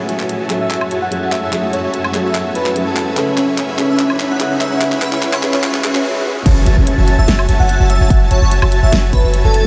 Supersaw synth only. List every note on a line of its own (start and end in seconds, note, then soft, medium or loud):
0.09 0.17 F#4 medium
0.09 0.17 C#5 medium
0.09 0.17 E5 medium
0.09 0.17 G#5 medium
0.09 0.17 A5 loud
0.20 0.38 F#4 medium
0.20 0.38 C#5 medium
0.20 0.38 E5 medium
0.20 0.38 G#5 medium
0.20 0.38 A5 medium
0.40 0.58 F#4 medium
0.40 0.58 C#5 medium
0.40 0.58 E5 medium
0.40 0.58 G#5 medium
0.40 0.58 A5 loud
0.61 0.69 F#4 medium
0.61 0.69 C#5 medium
0.61 0.69 E5 medium
0.61 0.69 G#5 medium
0.61 0.69 A5 medium
0.71 0.88 F#4 medium
0.71 0.88 C#5 medium
0.71 0.88 E5 medium
0.71 0.88 G#5 medium
0.71 0.88 A5 medium
0.91 0.99 F#4 medium
0.91 0.99 C#5 medium
0.91 0.99 E5 medium
0.91 0.99 G#5 medium
0.91 0.99 A5 loud
1.02 1.20 F#4 loud
1.02 1.20 C#5 medium
1.02 1.20 E5 medium
1.02 1.20 G#5 medium
1.02 1.20 A5 loud
1.22 1.40 F#4 medium
1.22 1.40 C#5 medium
1.22 1.40 E5 medium
1.22 1.40 G#5 medium
1.22 1.40 A5 loud
1.43 1.51 F#4 medium
1.43 1.51 C#5 medium
1.43 1.51 E5 medium
1.43 1.51 G#5 medium
1.43 1.51 A5 loud
1.53 1.71 F#4 medium
1.53 1.71 C#5 medium
1.53 1.71 E5 medium
1.53 1.71 G#5 medium
1.53 1.71 A5 medium
1.73 1.81 F#4 medium
1.73 1.81 C#5 medium
1.73 1.81 E5 medium
1.73 1.81 G#5 medium
1.73 1.81 A5 loud
1.84 2.02 F#4 medium
1.84 2.02 C#5 medium
1.84 2.02 E5 medium
1.84 2.02 G#5 medium
1.84 2.02 A5 medium
2.05 2.23 F#4 medium
2.05 2.23 C#5 medium
2.05 2.23 E5 medium
2.05 2.23 G#5 medium
2.05 2.23 A5 loud
2.25 2.33 F#4 medium
2.25 2.33 C#5 medium
2.25 2.33 E5 medium
2.25 2.33 G#5 medium
2.25 2.33 A5 medium
2.35 2.52 F#4 medium
2.35 2.52 C#5 medium
2.35 2.52 E5 medium
2.35 2.52 G#5 medium
2.35 2.52 A5 medium
2.56 2.64 F#4 loud
2.56 2.64 C#5 medium
2.56 2.64 E5 medium
2.56 2.64 G#5 medium
2.56 2.64 A5 loud
2.66 2.84 F#4 loud
2.66 2.84 C#5 medium
2.66 2.84 E5 medium
2.66 2.84 G#5 medium
2.66 2.84 A5 loud
2.87 3.05 F#4 loud
2.87 3.05 C#5 medium
2.87 3.05 E5 medium
2.87 3.05 G#5 medium
2.87 3.05 A5 loud
3.07 3.16 F#4 medium
3.07 3.16 C#5 medium
3.07 3.16 E5 medium
3.07 3.16 G#5 medium
3.07 3.16 A5 loud
3.17 3.35 C#4 medium
3.17 3.35 C#5 medium
3.17 3.35 E5 medium
3.17 3.35 G#5 medium
3.17 3.35 B5 medium
3.38 3.46 C#4 medium
3.38 3.46 C#5 medium
3.38 3.46 E5 medium
3.38 3.46 G#5 medium
3.38 3.46 B5 loud
3.48 3.66 C#4 medium
3.48 3.66 C#5 medium
3.48 3.66 E5 medium
3.48 3.66 G#5 medium
3.48 3.66 C#6 medium
3.69 3.87 C#4 loud
3.69 3.87 C#5 medium
3.69 3.87 E5 medium
3.69 3.87 G#5 medium
3.69 3.87 B5 loud
3.89 3.98 C#4 medium
3.89 3.98 C#5 medium
3.89 3.98 E5 medium
3.89 3.98 G#5 medium
3.89 3.98 B5 loud
3.99 4.17 C#4 medium
3.99 4.17 C#5 medium
3.99 4.17 E5 medium
3.99 4.17 G#5 medium
3.99 4.17 B5 medium
4.20 4.28 C#4 loud
4.20 4.28 C#5 medium
4.20 4.28 E5 medium
4.20 4.28 G#5 medium
4.20 4.28 B5 loud
4.31 4.49 C#4 medium
4.31 4.49 C#5 medium
4.31 4.49 E5 medium
4.31 4.49 G#5 medium
4.31 4.49 B5 loud
4.51 4.69 C#4 medium
4.51 4.69 C#5 medium
4.51 4.69 E5 medium
4.51 4.69 G#5 medium
4.51 4.69 B5 loud
4.72 4.80 C#4 medium
4.72 4.80 C#5 medium
4.72 4.80 E5 medium
4.72 4.80 G#5 medium
4.72 4.80 B5 loud
4.81 5.00 C#4 medium
4.81 5.00 C#5 medium
4.81 5.00 E5 medium
4.81 5.00 G#5 medium
4.81 5.00 B5 medium
5.02 5.10 C#4 loud
5.02 5.10 C#5 medium
5.02 5.10 E5 medium
5.02 5.10 G#5 medium
5.02 5.10 B5 loud
5.13 5.31 C#4 medium
5.13 5.31 C#5 medium
5.13 5.31 E5 medium
5.13 5.31 G#5 medium
5.13 5.31 C#6 medium
5.33 5.51 C#4 loud
5.33 5.51 C#5 medium
5.33 5.51 E5 medium
5.33 5.51 G#5 medium
5.33 5.51 B5 loud
5.54 5.62 C#4 medium
5.54 5.62 C#5 medium
5.54 5.62 E5 medium
5.54 5.62 G#5 medium
5.54 5.62 B5 loud
5.64 5.81 C#4 medium
5.64 5.81 C#5 medium
5.64 5.81 E5 medium
5.64 5.81 G#5 medium
5.64 5.81 B5 medium
5.95 6.02 C#4 medium
5.95 6.02 C#5 medium
5.95 6.02 E5 medium
5.95 6.02 G#5 medium
5.95 6.02 B5 loud
6.46 6.64 F#4 medium
6.46 6.64 C#5 medium
6.46 6.64 E5 medium
6.46 6.64 G#5 medium
6.46 6.64 A5 medium
6.66 6.75 F#4 loud
6.66 6.75 C#5 medium
6.66 6.75 E5 medium
6.66 6.75 G#5 medium
6.66 6.75 A5 loud
6.77 6.95 F#4 medium
6.77 6.95 C#5 medium
6.77 6.95 E5 medium
6.77 6.95 G#5 medium
6.77 6.95 A5 medium
6.98 7.16 F#4 loud
6.98 7.16 C#5 medium
6.98 7.16 E5 medium
6.98 7.16 G#5 medium
6.98 7.16 A5 loud
7.18 7.27 F#4 medium
7.18 7.27 C#5 medium
7.18 7.27 E5 medium
7.18 7.27 G#5 medium
7.18 7.27 A5 loud
7.28 7.46 F#4 medium
7.28 7.46 C#5 medium
7.28 7.46 E5 medium
7.28 7.46 G#5 medium
7.28 7.46 A5 medium
7.49 7.57 F#4 loud
7.49 7.57 C#5 medium
7.49 7.57 E5 medium
7.49 7.57 G#5 medium
7.49 7.57 A5 loud
7.59 7.77 F#4 loud
7.59 7.77 C#5 medium
7.59 7.77 E5 medium
7.59 7.77 G#5 medium
7.59 7.77 A5 loud
7.80 7.98 F#4 medium
7.80 7.98 C#5 medium
7.80 7.98 E5 medium
7.80 7.98 G#5 medium
7.80 7.98 A5 loud
8.00 8.09 F#4 medium
8.00 8.09 C#5 medium
8.00 8.09 E5 medium
8.00 8.09 G#5 medium
8.00 8.09 A5 loud
8.10 8.28 F#4 medium
8.10 8.28 C#5 medium
8.10 8.28 E5 medium
8.10 8.28 G#5 medium
8.10 8.28 A5 medium
8.31 8.39 F#4 loud
8.31 8.39 C#5 medium
8.31 8.39 E5 medium
8.31 8.39 G#5 medium
8.31 8.39 A5 loud
8.41 8.59 F#4 medium
8.41 8.59 C#5 medium
8.41 8.59 E5 medium
8.41 8.59 G#5 medium
8.41 8.60 A5 medium
8.62 8.80 F#4 loud
8.62 8.80 C#5 medium
8.62 8.80 E5 medium
8.62 8.80 G#5 medium
8.62 8.80 A5 loud
8.83 8.91 F#4 medium
8.83 8.91 C#5 medium
8.83 8.91 E5 medium
8.83 8.91 G#5 medium
8.83 8.91 A5 medium
8.92 9.10 F#4 medium
8.92 9.10 C#5 medium
8.92 9.10 E5 medium
8.92 9.10 G#5 medium
8.92 9.10 A5 medium
9.13 9.21 F#4 loud
9.13 9.21 C#5 medium
9.13 9.21 E5 medium
9.13 9.21 G#5 medium
9.13 9.21 A5 loud
9.24 9.42 F#4 loud
9.24 9.42 C#5 medium
9.24 9.42 E5 medium
9.24 9.42 G#5 medium
9.24 9.42 A5 loud
9.44 9.62 F#4 loud
9.44 9.62 C#5 medium
9.44 9.62 E5 medium
9.44 9.62 G#5 medium
9.44 9.62 A5 loud